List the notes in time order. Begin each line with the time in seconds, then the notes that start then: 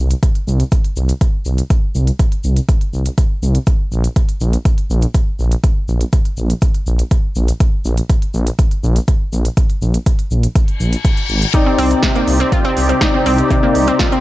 0.00 C2
0.10 closed hi-hat, shaker
0.23 kick, closed hi-hat, shaker
0.35 closed hi-hat
0.47 C2, shaker
0.60 closed hi-hat, shaker
0.72 kick, closed hi-hat, shaker
0.84 closed hi-hat
0.96 C2, shaker
1.09 closed hi-hat, shaker
1.21 kick, closed hi-hat, shaker
1.45 C2, shaker
1.58 closed hi-hat, shaker
1.70 kick, closed hi-hat, shaker
1.95 C2, shaker
2.07 closed hi-hat, shaker
2.19 kick, closed hi-hat, shaker
2.32 closed hi-hat
2.44 C2, shaker
2.57 closed hi-hat, shaker
2.69 kick, closed hi-hat, shaker
2.81 closed hi-hat
2.93 C2, shaker
3.05 closed hi-hat, shaker
3.18 kick, closed hi-hat, shaker
3.42 C2, shaker
3.55 closed hi-hat, shaker
3.67 kick, closed hi-hat, shaker
3.92 A#1, shaker
4.04 closed hi-hat, shaker
4.16 kick, closed hi-hat, shaker
4.29 closed hi-hat
4.41 A#1, shaker
4.53 closed hi-hat, shaker
4.65 kick, closed hi-hat, shaker
4.78 closed hi-hat
4.90 A#1, shaker
5.01 closed hi-hat, shaker
5.14 kick, closed hi-hat, shaker
5.39 A#1, shaker
5.51 closed hi-hat, shaker
5.64 kick, closed hi-hat, shaker
5.88 A#1, shaker
6.01 closed hi-hat, shaker
6.12 kick, closed hi-hat, shaker
6.25 closed hi-hat
6.37 A#1, shaker
6.50 closed hi-hat, shaker
6.61 kick, closed hi-hat, shaker
6.75 closed hi-hat
6.87 A#1, shaker
6.99 closed hi-hat, shaker
7.11 kick, closed hi-hat, shaker
7.35 A#1, shaker
7.48 closed hi-hat, shaker
7.60 kick, closed hi-hat, shaker
7.85 A#1, shaker
7.97 closed hi-hat, shaker
8.10 kick, closed hi-hat, shaker
8.22 closed hi-hat
8.34 A#1, shaker
8.47 closed hi-hat, shaker
8.59 kick, closed hi-hat, shaker
8.71 closed hi-hat
8.83 A#1, shaker
8.96 closed hi-hat, shaker
9.07 kick, closed hi-hat, shaker
9.33 A#1, shaker
9.45 closed hi-hat, shaker
9.57 kick, closed hi-hat, shaker
9.70 closed hi-hat
9.82 A#1, shaker
9.94 closed hi-hat, shaker
10.06 kick, closed hi-hat, shaker
10.19 closed hi-hat
10.31 A#1, shaker
10.43 closed hi-hat, shaker
10.55 kick, closed hi-hat, reverse cymbal, shaker
10.68 closed hi-hat
10.80 A#1, shaker
10.93 closed hi-hat, shaker
11.05 kick, closed hi-hat, shaker
11.17 closed hi-hat
11.29 G#1, shaker
11.42 closed hi-hat, shaker
11.54 C3 C4 D#4 G4 D5, kick, closed hi-hat, shaker
11.66 C4
11.78 C2 C4, open hi-hat, shaker
11.91 closed hi-hat, shaker
12.03 C3, kick, snare, closed hi-hat, shaker
12.15 A#3, closed hi-hat
12.27 C2, open hi-hat, shaker
12.39 C4, closed hi-hat, shaker
12.52 F4, kick, closed hi-hat, shaker
12.65 C4, closed hi-hat
12.77 C2, open hi-hat, shaker
12.89 C4, closed hi-hat, shaker
13.01 C4 D#4 D5, kick, snare, closed hi-hat, shaker
13.14 C4
13.26 C2 C4, open hi-hat, shaker
13.38 closed hi-hat, shaker
13.51 C3 C4 D#4 D5, kick, closed hi-hat, shaker
13.63 A#3
13.75 C2, open hi-hat, shaker
13.87 C4, closed hi-hat, shaker
13.99 F4, kick, snare, closed hi-hat, shaker
14.12 C4, closed hi-hat